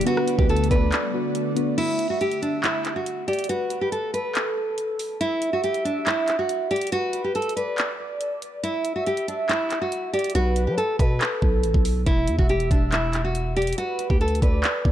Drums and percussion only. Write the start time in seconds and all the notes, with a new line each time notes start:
0.01 closed hi-hat
0.07 closed hi-hat
0.17 cross-stick
0.28 closed hi-hat
0.39 kick
0.49 closed hi-hat
0.56 closed hi-hat
0.64 closed hi-hat
0.71 kick, closed hi-hat
0.92 clap, closed hi-hat
1.35 closed hi-hat
1.57 closed hi-hat
1.78 closed hi-hat, crash
1.99 closed hi-hat
2.21 closed hi-hat
2.32 closed hi-hat
2.43 closed hi-hat
2.64 clap, closed hi-hat
2.85 clap, closed hi-hat
3.06 closed hi-hat
3.28 closed hi-hat
3.33 closed hi-hat
3.39 closed hi-hat
3.44 closed hi-hat
3.49 closed hi-hat
3.70 closed hi-hat
3.92 closed hi-hat
4.14 closed hi-hat
4.35 clap, closed hi-hat
4.78 closed hi-hat
4.99 open hi-hat
5.21 closed hi-hat
5.42 closed hi-hat
5.64 closed hi-hat
5.74 closed hi-hat
5.86 closed hi-hat
6.07 clap, closed hi-hat
6.28 clap, closed hi-hat
6.49 closed hi-hat
6.71 closed hi-hat
6.76 closed hi-hat
6.81 closed hi-hat
6.87 closed hi-hat
6.92 closed hi-hat
7.13 closed hi-hat
7.35 closed hi-hat
7.42 closed hi-hat
7.49 closed hi-hat
7.57 closed hi-hat
7.78 clap, closed hi-hat
8.21 closed hi-hat
8.42 closed hi-hat
8.64 closed hi-hat
8.85 closed hi-hat
9.06 closed hi-hat
9.17 closed hi-hat
9.28 closed hi-hat
9.49 clap, closed hi-hat
9.70 clap, closed hi-hat
9.92 closed hi-hat
10.14 closed hi-hat
10.19 closed hi-hat
10.24 closed hi-hat
10.30 closed hi-hat
10.35 closed hi-hat
10.56 closed hi-hat
10.78 closed hi-hat
10.99 kick, closed hi-hat
11.21 clap, closed hi-hat
11.42 kick
11.63 closed hi-hat
11.74 kick
11.85 open hi-hat
12.06 kick, closed hi-hat
12.27 closed hi-hat
12.39 kick
12.49 closed hi-hat
12.60 closed hi-hat
12.71 kick, closed hi-hat
12.92 clap, closed hi-hat
13.13 clap, closed hi-hat
13.35 closed hi-hat
13.57 closed hi-hat
13.62 closed hi-hat
13.67 closed hi-hat
13.73 closed hi-hat
13.78 closed hi-hat
13.99 closed hi-hat
14.10 kick
14.21 closed hi-hat
14.28 closed hi-hat
14.35 closed hi-hat
14.42 kick, closed hi-hat
14.64 clap, closed hi-hat
14.85 kick